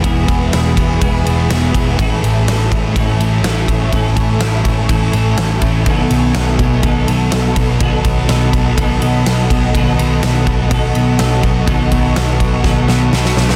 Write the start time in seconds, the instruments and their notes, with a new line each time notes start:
Already playing: ambient pad G#4 B4 E5 B5
0.02 picked electric bass E1, distorted electric guitar E2 B2 E3, overdriven electric guitar E3 G#3 B3 E4 G#4, kick, ride
0.27 picked electric bass E1, distorted electric guitar B2 E3, kick, ride
0.51 picked electric bass E1, distorted electric guitar E2 B2 E3, overdriven electric guitar G#3 B3 E4 G#4, snare, ride
0.76 picked electric bass E1, distorted electric guitar B2 E3, kick, ride
1.00 picked electric bass E1, distorted electric guitar E2 B2 E3, overdriven electric guitar E3 G#3 B3 E4 G#4, kick, ride
1.25 picked electric bass E1, distorted electric guitar B2 E3, overdriven electric guitar B3 E4 G#4, ride
1.48 picked electric bass E1, distorted electric guitar E2 B2, overdriven electric guitar G#3 B3 E4 G#4, snare, ride
1.52 distorted electric guitar E3
1.73 picked electric bass E1, distorted electric guitar B2 E3, kick, ride
1.98 picked electric bass A1, distorted electric guitar A2 E3 A3, overdriven electric guitar A2 E3 A3 C#4 E4 A4, ambient pad A4 G#5 C#6, kick, ride
2.22 picked electric bass A1, distorted electric guitar E3 A3, ride
2.46 picked electric bass A1, distorted electric guitar A2 E3 A3, overdriven electric guitar A3 C#4 E4 A4, snare, ride
2.71 picked electric bass A1, distorted electric guitar E3 A3, kick, ride
2.95 picked electric bass A1, distorted electric guitar A2 E3 A3, overdriven electric guitar A2 E3 A3 C#4 E4 A4, kick, ride
3.19 picked electric bass A1, distorted electric guitar E3 A3, overdriven electric guitar C#4 E4 A4, ride
3.23 overdriven electric guitar A3
3.43 picked electric bass A1, distorted electric guitar A2 E3 A3, overdriven electric guitar A3 C#4, snare, ride
3.47 overdriven electric guitar E4 A4
3.68 picked electric bass A1, distorted electric guitar E3 A3, kick, ride
3.92 picked electric bass A1, distorted electric guitar A2 E3 A3, overdriven electric guitar A2 E3 A3 C#4 E4 A4, kick, ride
4.16 picked electric bass A1, distorted electric guitar E3 A3, kick, ride
4.39 picked electric bass A1, distorted electric guitar A2 E3 A3, overdriven electric guitar A3 C#4 E4, snare, ride
4.43 overdriven electric guitar A4
4.64 picked electric bass A1, distorted electric guitar E3 A3, kick, ride
4.88 picked electric bass A1, distorted electric guitar A2 E3 A3, overdriven electric guitar A2 E3 A3 C#4 E4 A4, kick, ride
5.12 picked electric bass A1, distorted electric guitar E3 A3, overdriven electric guitar C#4 E4 A4, ride
5.17 overdriven electric guitar A3
5.36 picked electric bass A1, distorted electric guitar A2 E3 A3, overdriven electric guitar A3 C#4 E4, snare, ride
5.41 overdriven electric guitar A4
5.61 picked electric bass A1, distorted electric guitar E3 A3, kick, ride
5.85 picked electric bass B1, distorted electric guitar B2 F#3 B3, overdriven electric guitar B2 D#3 F#3 B3 D#4, ambient pad D#5 F#5 B5, kick, ride
5.89 overdriven electric guitar A4
6.09 picked electric bass B1, distorted electric guitar F#3 B3, ride
6.34 picked electric bass B1, distorted electric guitar B2 F#3 B3, overdriven electric guitar F#3 B3 D#4 A4, snare, ride
6.59 picked electric bass B1, distorted electric guitar F#3 B3, kick, ride
6.82 picked electric bass B1, distorted electric guitar B2 F#3 B3, overdriven electric guitar B2 D#3 F#3 B3 D#4 A4, kick, ride
7.07 picked electric bass B1, distorted electric guitar F#3 B3, overdriven electric guitar F#3 B3 D#4 A4, ride
7.30 picked electric bass B1, distorted electric guitar B2 F#3 B3, overdriven electric guitar F#3 B3 D#4 A4, snare, ride
7.56 picked electric bass B1, distorted electric guitar F#3 B3, kick, ride
7.79 picked electric bass B1, distorted electric guitar B2 F#3 B3, overdriven electric guitar B2 D#3 F#3 B3 D#4 A4, kick, ride
8.03 picked electric bass B1, distorted electric guitar F#3 B3, kick, ride
8.28 picked electric bass B1, distorted electric guitar B2 F#3 B3, overdriven electric guitar F#3 B3 D#4, snare, ride
8.32 overdriven electric guitar A4
8.52 picked electric bass B1, distorted electric guitar F#3 B3, kick, ride
8.76 picked electric bass B1, distorted electric guitar B2 F#3 B3, overdriven electric guitar B2 D#3 F#3 B3 D#4, kick, ride
8.80 overdriven electric guitar A4
9.01 picked electric bass B1, distorted electric guitar F#3 B3, overdriven electric guitar F#3 B3 D#4 A4, ride
9.25 picked electric bass B1, distorted electric guitar B2 F#3 B3, overdriven electric guitar F#3 B3 D#4 A4, snare, ride
9.50 picked electric bass B1, distorted electric guitar F#3 B3, kick, ride
9.74 picked electric bass B1, overdriven electric guitar B2 D#3 F#3 B3 D#4 A4, distorted electric guitar B2 F#3 B3, ambient pad C#6, kick, ride
9.98 picked electric bass B1, distorted electric guitar F#3 B3, ride
10.22 picked electric bass B1, distorted electric guitar B2 F#3 B3, overdriven electric guitar F#3 B3 D#4 A4, snare, ride
10.46 picked electric bass B1, distorted electric guitar F#3 B3, kick, ride
10.70 picked electric bass B1, distorted electric guitar B2 F#3 B3, overdriven electric guitar B2 D#3 F#3 B3 D#4, kick, ride
10.74 overdriven electric guitar A4
10.94 picked electric bass B1, distorted electric guitar F#3 B3, overdriven electric guitar B3 D#4 A4, ride
10.98 overdriven electric guitar F#3
11.18 picked electric bass B1, distorted electric guitar B2 F#3 B3, overdriven electric guitar F#3 B3 D#4 A4, snare, ride
11.42 picked electric bass B1, distorted electric guitar F#3 B3, kick, ride
11.66 picked electric bass B1, overdriven electric guitar B2 D#3 F#3 B3 D#4 A4, distorted electric guitar B2 F#3 B3, kick, ride
11.91 picked electric bass B1, distorted electric guitar F#3 B3, kick, ride
12.14 picked electric bass B1, distorted electric guitar B2 F#3 B3, overdriven electric guitar F#3 B3 D#4 A4, snare, ride
12.40 picked electric bass B1, distorted electric guitar F#3 B3, kick, ride
12.63 picked electric bass B1, overdriven electric guitar B2 D#3 F#3 B3 D#4 A4, distorted electric guitar B2 F#3 B3, kick, snare
12.87 picked electric bass B1, distorted electric guitar F#3 B3, overdriven electric guitar F#3 B3 D#4 A4, snare
13.12 picked electric bass B1, distorted electric guitar B2 F#3 B3, overdriven electric guitar F#3 B3 D#4 A4, snare
13.25 snare
13.37 picked electric bass B1, distorted electric guitar F#3 B3, snare
13.49 snare